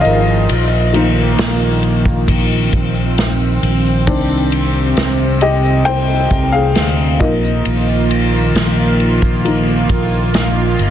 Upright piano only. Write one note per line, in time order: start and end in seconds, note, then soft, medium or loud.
0.00 0.50 G3 medium
0.00 0.51 G#3 soft
0.00 0.51 D#4 medium
0.00 0.51 G4 medium
0.00 0.51 G#4 medium
0.00 0.51 C5 medium
0.00 1.78 D#5 medium
0.00 0.51 F5 loud
0.00 0.51 G5 loud
0.05 1.80 A#4 medium
0.93 1.53 F3 medium
0.93 1.53 A#3 soft
0.93 1.54 D#4 medium
4.07 5.37 D#3 medium
4.07 5.38 C4 medium
4.07 5.38 D4 medium
5.42 5.83 G4 medium
5.42 5.83 D#5 medium
5.85 6.49 C5 medium
5.85 6.55 G5 loud
6.52 7.17 G#4 medium
6.52 7.22 F5 medium
7.20 8.51 F3 medium
7.20 8.51 A#3 medium
7.20 8.51 D#4 medium
7.20 8.96 A#4 medium
7.20 8.95 D#5 medium
9.45 9.85 F3 medium
9.45 9.85 A#3 soft
9.45 9.86 D#4 medium